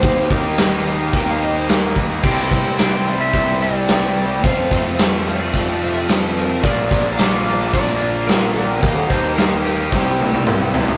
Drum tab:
CC |----------------|x---------------|----------------|----------------|
HH |x-x-x-x-x-x-x-x-|--x-x-x-x-x-x-x-|x-x-x-x-x-x-x-x-|x-x-x-x-x-x-x-x-|
TB |----x-------x---|----x-------x---|----x-------x---|----x-------x---|
SD |----o-------o---|----o-------o---|----o-------o---|----o-------o---|
T1 |----------------|----------------|----------------|----------------|
T2 |----------------|----------------|----------------|----------------|
FT |----------------|----------------|----------------|----------------|
BD |o-o-----o-----o-|o-o-----o-------|o-o-----o-------|o-o-----o-------|

CC |----------------|
HH |x-x-x-x---------|
TB |----x-----------|
SD |----o---o-------|
T1 |----------oo----|
T2 |------------o---|
FT |--------------oo|
BD |o-o-----o-------|